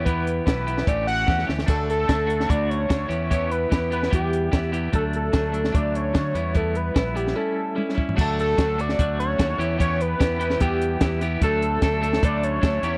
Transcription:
<<
  \new Staff \with { instrumentName = "Analog synth lead" } { \time 4/4 \key d \major \tempo 4 = 148 b'4 b'4 d''8 fis''4 r8 | a'8 a'4. d''8 cis''4. | cis''8 b'4 b'8 g'4. r8 | a'8 a'4. d''8 cis''4. |
a'8 b'4 g'8 a'4. r8 | a'8 a'4 d''4 cis''4. | cis''8 b'4 b'8 g'4. r8 | a'8 a'4. d''8 cis''4. | }
  \new Staff \with { instrumentName = "Overdriven electric guitar" } { \time 4/4 \key d \major <e b e' g'>4 <e b e' g'>8 <e b e' g'>8 <e a cis' g'>4 <e a cis' g'>8 <e a cis' g'>8 | <a d' fis'>4 <a d' fis'>8 <a d' fis'>8 <a d' fis'>4 <a d' fis'>8 <e b e' g'>8 | <e b e' g'>4 <e b e' g'>8 <e b e' g'>8 <e b e' g'>4 <e b e' g'>8 <e b e' g'>8 | <fis a d'>4 <fis a d'>8 <fis a d'>8 <fis a d'>4 <fis a d'>8 <g b e'>8 |
<g b e'>4 <g b e'>8 <g b e'>8 <g cis' e'>4 <g cis' e'>8 <g cis' e'>8 | <fis a d' fis'>4 <fis a d' fis'>8 <fis a d' fis'>8 <fis a d' fis'>4 <fis a d' fis'>8 <e b e' g'>8 | <e b e' g'>4 <e b e' g'>8 <e b e' g'>8 <e b e' g'>4 <e b e' g'>8 <e b e' g'>8 | <fis a d' a'>4 <fis a d' a'>8 <fis a d' a'>8 <fis a d' a'>4 <fis a d' a'>8 <e b e' g'>8 | }
  \new Staff \with { instrumentName = "Fingered electric bass" } { \clef bass \time 4/4 \key d \major e,4 b,,4 a,,4 e,8 d,8 | d,4 d,4 d,4 d,8 e,8~ | e,4 e,4 e,4 e,4 | d,4 d,4 d,4 d8 e,8~ |
e,4 bes,,4 r2 | d,4 d,4 d,4 ees,8 e,8~ | e,4 e,4 e,4 e,4 | d,4 d,4 d,4 d,8 e,8 | }
  \new DrumStaff \with { instrumentName = "Drums" } \drummode { \time 4/4 <hh bd>8 hh8 <hh bd sn>8 hh16 sn16 <hh bd>8 hh8 <bd sn>16 sn16 sn16 sn16 | <cymc hh bd>8 hh8 <hh bd sn>8 hh16 sn16 <hh bd>8 hh8 <hh bd sn>8 hh8 | <hh bd>8 hh8 <hh bd sn>8 hh16 sn16 <hh bd>8 hh8 <hh bd sn>8 hh8 | <hh bd>8 hh8 <hh bd sn>8 hh16 sn16 <hh bd>8 hh8 <hh bd sn>8 hh8 |
<hh bd>8 hh8 <hh bd sn>8 hh16 sn16 r4 tommh16 sn16 bd16 tomfh16 | <cymc bd>8 hh8 <hh bd sn>8 hh16 sn16 <hh bd>8 hh8 <hh bd sn>8 hh8 | <hh bd>8 hh8 <hh bd sn>8 hh16 sn16 <hh bd>8 hh8 <hh bd sn>8 hh8 | <hh bd>8 hh8 <hh bd sn>8 hh16 sn16 <hh bd>8 hh8 <hh bd sn>8 hh8 | }
>>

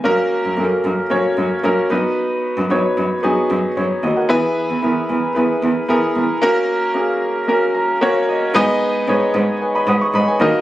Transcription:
<<
  \new Staff \with { instrumentName = "Grand piano" } { \time 4/4 \key gis \minor \tempo 4 = 113 << { r1 | r2. cis''8 <fis' dis''>16 <ais' fis''>16~ | <ais' fis''>16 r2. r8. | r2 r8 ais''8 fis''8 dis''8 |
r2 <b' gis''>16 <dis'' b''>16 <fis'' dis'''>16 cis'''16 <dis'' b''>16 <b' gis''>8 r16 | } \\ { <ais cis' fis' ais'>4 <ais cis' fis' a' ais'>4 <ais cis' fis' cis''>4 <ais cis' fis' ais'>8 <b dis' fis' b'>8~ | <b dis' fis' b'>8. r16 <b dis' fis' cis''>4 <b dis' fis' gis'>4 r4 | <b e' gis' b'>4 <b e' gis' ais'>4 <b e' gis' b'>4 <b e' gis' ais'>4 | <ais cis' fis' ais'>4 <ais cis' fis' gis'>4 <ais cis' fis' ais'>4 <ais cis' fis' cis''>4 |
<b dis' gis' b' dis''>4 <b dis' gis' b' cis''>4 r4. <ais dis' fis' ais' dis''>8 | } >> }
  \new Staff \with { instrumentName = "Grand piano" } { \clef bass \time 4/4 \key gis \minor r1 | r1 | e4. r2 r8 | r1 |
gis,4. r2 dis8 | }
  \new Staff \with { instrumentName = "Cello" } { \clef bass \time 4/4 \key gis \minor fis,8 r16 fis,16 fis,8 fis,8 fis,8 fis,8 fis,8 fis,8~ | fis,8 r16 fis,16 fis,8 fis,8 fis,8 fis,8 fis,8 dis,8 | e,8 r16 e,16 e,8 e,8 e,8 e,8 e,8 e,8 | r1 |
gis,4 gis,8 gis,8. r16 gis,8 gis,8 dis,8 | }
>>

